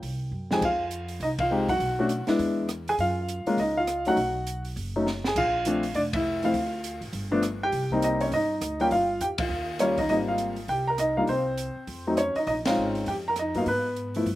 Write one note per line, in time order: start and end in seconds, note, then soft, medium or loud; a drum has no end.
0.00 0.30 C2 medium
0.00 0.47 G5 medium
0.00 kick soft
0.00 open hi-hat soft
0.31 0.59 F#2 medium
0.51 0.61 F2 medium
0.51 0.61 G#3 soft
0.51 0.62 C4 soft
0.51 0.61 D#4 soft
0.51 0.62 G4 medium
0.51 0.62 G#4 medium
0.51 0.63 G#5 medium
0.51 snare soft
0.62 1.18 F2 medium
0.62 1.19 F4 medium
0.62 1.19 F5 medium
0.62 kick medium
0.62 crash medium
0.91 closed hi-hat soft
1.08 open hi-hat soft
1.20 1.65 C2 medium
1.20 1.29 D#4 medium
1.20 1.28 D#5 medium
1.20 kick soft
1.20 open hi-hat soft
1.38 1.68 F4 medium
1.38 1.70 F5 medium
1.38 kick medium
1.38 ride medium
1.51 1.67 G#3 medium
1.51 1.67 C4 medium
1.51 1.67 D#4 medium
1.51 1.68 G4 medium
1.68 1.79 F#2 medium
1.68 1.98 F#4 medium
1.68 2.24 F#5 medium
1.68 kick medium
1.68 open hi-hat soft
1.80 2.25 B1 medium
1.80 kick soft
1.80 open hi-hat soft
1.99 2.09 A3 medium
1.99 2.09 C#4 medium
1.99 2.09 D4 medium
1.99 2.09 F#4 medium
2.09 closed hi-hat soft
2.27 2.67 G#3 medium
2.27 2.67 B3 medium
2.27 2.67 D4 medium
2.27 2.67 E4 medium
2.27 muted upright bass stroke soft
2.27 snare soft
2.27 open hi-hat soft
2.39 2.95 E2 medium
2.39 kick soft
2.39 open hi-hat soft
2.69 cross-stick medium
2.69 closed hi-hat soft
2.88 2.94 G#4 medium
2.88 2.94 G#5 medium
2.88 open hi-hat soft
2.98 3.43 F#2 medium
2.98 3.46 F4 medium
2.98 3.61 F5 medium
2.98 kick soft
2.98 open hi-hat soft
3.28 closed hi-hat soft
3.46 3.57 G#3 medium
3.46 3.57 A#3 medium
3.46 3.57 C#4 medium
3.46 3.57 F4 medium
3.46 muted upright bass stroke soft
3.46 open hi-hat soft
3.57 4.14 C#2 medium
3.57 3.76 D#5 medium
3.57 kick soft
3.57 open hi-hat soft
3.62 3.77 D#4 medium
3.77 4.05 F4 medium
3.77 4.07 F5 medium
3.87 cross-stick medium
3.87 closed hi-hat soft
4.05 4.16 F#3 medium
4.05 4.16 A3 medium
4.05 4.16 C#4 medium
4.05 4.17 D#4 medium
4.05 4.62 F#5 medium
4.05 open hi-hat soft
4.10 4.63 F#4 medium
4.16 4.73 B1 medium
4.16 kick soft
4.16 open hi-hat soft
4.47 closed hi-hat medium
4.65 open hi-hat soft
4.76 5.33 F#1 medium
4.76 kick soft
4.76 open hi-hat soft
4.96 5.06 F#3 medium
4.96 5.05 A3 medium
4.96 5.06 C#4 medium
4.96 5.06 D#4 medium
5.06 snare soft
5.24 5.37 G#4 medium
5.24 5.37 G#5 medium
5.24 snare medium
5.36 5.92 A#1 medium
5.36 5.92 F4 medium
5.36 5.98 F5 loud
5.36 kick medium
5.36 crash medium
5.65 5.82 F3 medium
5.65 5.82 A3 medium
5.65 5.82 C4 medium
5.65 5.83 D4 medium
5.65 closed hi-hat medium
5.83 open hi-hat soft
5.94 6.51 F1 medium
5.94 6.02 D4 medium
5.94 6.00 D5 medium
5.94 kick soft
5.94 open hi-hat soft
6.13 6.42 E4 medium
6.13 6.44 E5 medium
6.13 kick medium
6.13 ride medium
6.43 6.53 F3 medium
6.43 6.53 A3 medium
6.43 6.54 C4 medium
6.43 6.54 E4 medium
6.43 6.99 F5 medium
6.43 open hi-hat soft
6.47 7.00 F4 medium
6.53 6.98 D2 medium
6.53 kick soft
6.53 open hi-hat soft
6.84 closed hi-hat medium
7.01 7.12 G#1 medium
7.01 open hi-hat soft
7.13 7.69 G1 medium
7.13 kick soft
7.13 open hi-hat soft
7.31 7.42 F3 medium
7.31 7.42 A3 medium
7.31 7.42 B3 medium
7.31 7.42 D4 medium
7.43 cross-stick medium
7.43 closed hi-hat soft
7.63 7.90 G4 medium
7.63 7.90 G5 loud
7.72 8.29 C2 medium
7.72 kick soft
7.72 open hi-hat soft
7.91 8.30 G3 medium
7.91 8.30 A#3 medium
7.91 8.30 C4 medium
7.91 8.04 D#4 medium
7.91 kick soft
8.02 8.21 D#4 medium
8.02 8.20 D#5 medium
8.02 closed hi-hat medium
8.20 8.32 C#4 medium
8.20 8.31 C#5 medium
8.20 open hi-hat soft
8.32 8.59 G1 medium
8.32 8.78 D#4 medium
8.32 8.77 D#5 medium
8.32 kick soft
8.32 open hi-hat soft
8.61 8.89 D2 medium
8.61 cross-stick medium
8.61 closed hi-hat medium
8.80 8.90 G3 medium
8.80 8.90 A#3 medium
8.80 8.91 C#4 medium
8.80 8.91 F4 medium
8.80 8.87 G4 medium
8.80 8.86 G5 medium
8.80 open hi-hat soft
8.90 9.18 G1 medium
8.90 9.21 F4 medium
8.90 9.19 F5 medium
8.90 kick soft
8.90 open hi-hat soft
9.20 9.48 E2 medium
9.20 9.29 G4 medium
9.20 9.26 G5 medium
9.20 closed hi-hat soft
9.38 9.79 F4 medium
9.38 9.78 F5 medium
9.38 kick medium
9.38 ride medium
9.49 10.06 D#2 medium
9.79 9.97 G3 medium
9.79 9.97 A#3 medium
9.79 9.97 C#4 medium
9.79 9.97 F4 medium
9.79 9.97 C#5 medium
9.79 cross-stick medium
9.79 closed hi-hat medium
9.98 10.10 D#4 medium
9.98 10.08 D#5 medium
9.98 kick medium
9.98 open hi-hat soft
10.09 10.66 G#1 medium
10.09 10.54 G3 medium
10.09 10.54 A#3 soft
10.09 10.55 C4 soft
10.09 10.17 D#4 medium
10.09 10.28 F4 medium
10.09 10.15 D#5 medium
10.09 kick soft
10.09 open hi-hat soft
10.28 10.57 F4 medium
10.28 10.56 F5 medium
10.38 closed hi-hat soft
10.56 open hi-hat soft
10.68 11.25 C2 medium
10.68 10.87 G4 medium
10.68 10.88 G5 medium
10.68 kick soft
10.68 open hi-hat soft
10.87 10.99 A#4 medium
10.87 10.99 A#5 medium
10.98 11.17 D#4 medium
10.98 11.18 D#5 medium
10.98 cross-stick medium
10.98 closed hi-hat soft
11.17 11.27 G3 soft
11.17 11.28 A#3 medium
11.17 11.28 D4 soft
11.17 11.28 D#4 medium
11.17 11.24 F4 medium
11.17 11.22 F5 medium
11.27 11.72 C2 medium
11.27 12.06 C4 medium
11.27 12.21 C5 medium
11.27 kick soft
11.27 open hi-hat soft
11.57 closed hi-hat soft
11.76 muted upright bass stroke soft
11.87 12.32 F2 medium
11.87 kick soft
11.87 open hi-hat soft
12.07 12.17 F#3 medium
12.07 12.17 A3 medium
12.07 12.17 C4 medium
12.07 12.17 D#4 medium
12.17 12.36 C#4 medium
12.17 12.35 C#5 medium
12.17 cross-stick medium
12.17 closed hi-hat soft
12.35 12.48 D#4 medium
12.35 12.46 D#5 medium
12.35 muted upright bass stroke soft
12.35 open hi-hat soft
12.47 12.75 A#1 medium
12.47 12.55 D#4 medium
12.47 12.52 D#5 medium
12.47 kick soft
12.47 open hi-hat soft
12.65 13.05 G#3 medium
12.65 13.05 C4 medium
12.65 13.05 C#4 medium
12.65 13.05 D#4 medium
12.65 12.94 F5 medium
12.65 snare medium
12.65 ride medium
12.70 12.96 F4 medium
12.77 13.05 G#1 medium
12.95 open hi-hat soft
13.06 13.52 F2 medium
13.06 13.15 G4 medium
13.06 13.13 G5 medium
13.06 kick soft
13.06 open hi-hat soft
13.28 13.34 A#4 medium
13.28 13.32 A#5 medium
13.36 13.57 D#5 medium
13.36 cross-stick medium
13.36 closed hi-hat soft
13.41 13.55 D#4 medium
13.55 13.66 G2 medium
13.55 13.66 F#3 medium
13.55 13.66 A#3 medium
13.55 13.66 B3 medium
13.55 13.66 D#4 medium
13.55 13.62 F5 medium
13.55 open hi-hat soft
13.59 13.64 F4 medium
13.66 14.23 G#2 medium
13.66 14.15 B3 medium
13.66 14.35 B4 medium
13.66 kick soft
13.66 open hi-hat soft
13.96 closed hi-hat soft
14.14 14.26 F3 medium
14.14 14.26 A3 medium
14.14 14.26 B3 soft
14.14 14.26 E4 medium
14.14 open hi-hat soft
14.26 14.35 G2 medium
14.26 kick soft
14.26 open hi-hat soft